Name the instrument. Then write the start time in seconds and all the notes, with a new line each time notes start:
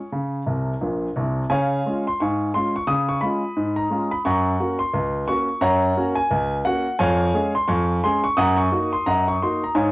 grand piano
Already playing: C#5 G#5 C#6
0.12 C#3
0.46 C2 C3
0.81 A#1 A#2
1.16 C2 C3
1.50 C#3 C#5 F5 G#5
1.86 G#3 C#4 F4
2.07 C6
2.20 G#2 F5 G#5 C#6
2.54 G#3 C#4 F4 C6
2.76 C#6
2.87 C#3 D#6
3.09 C#6
3.21 G#3 C#4 F4 B5
3.56 G#2
3.76 A#5
3.90 G#3 C#4 F4
4.11 B5
4.25 F#2 F#5 A#5 C#6
4.59 A#3 C#4 F#4
4.79 C6
4.94 C#2
5.28 A#3 C#4 F#4 C#6
5.61 F#2 C#5 F#5 A#5
5.97 A#3 C#4 F#4
6.15 G#5
6.31 C#2
6.65 A#3 C#4 F#4 F#5
6.99 F2 C#5 F5 G#5
7.34 G#3 C#4 G#4
7.55 C6
7.68 F2 F5 G#5 C#6
8.04 G#3 C#4 G#4 C6
8.24 C#6
8.37 F#2 F#5 A#5 D#6
8.57 C#6
8.72 A#3 D#4 F#4
8.93 C6
9.06 F#2 D#5 F#5 A#5
9.28 C#6
9.42 A#3 D#4 F#4 C6
9.64 A#5
9.75 G#2 C#5 F5 G#5